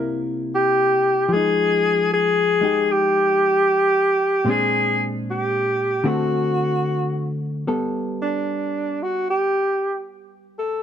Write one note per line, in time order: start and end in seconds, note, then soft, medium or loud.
0.00 1.30 C3 medium
0.00 1.30 A#3 soft
0.00 1.31 E4 medium
0.00 0.26 A#4 medium
0.55 1.26 G4 medium
1.26 4.43 F3 soft
1.26 1.34 G4 medium
1.33 2.60 G#3 soft
1.33 2.62 D#4 soft
1.33 2.09 G#4 loud
2.14 2.93 G#4 loud
2.61 4.44 G#3 soft
2.61 4.45 D#4 soft
2.61 4.46 G4 soft
2.92 4.52 G4 loud
4.45 6.03 A#2 soft
4.45 6.03 G#3 soft
4.45 6.04 C4 medium
4.49 6.05 D4 medium
4.49 5.08 G#4 medium
5.30 6.09 G4 medium
6.04 7.65 D3 medium
6.04 7.66 A3 soft
6.04 7.66 C4 medium
6.04 7.66 F#4 soft
6.04 7.39 F#4 medium
7.67 10.83 G3 soft
7.67 10.83 B3 soft
7.67 10.83 A4 soft
8.22 9.04 D4 medium
9.03 9.26 F#4 medium
9.30 10.03 G4 medium
10.58 10.83 A4 medium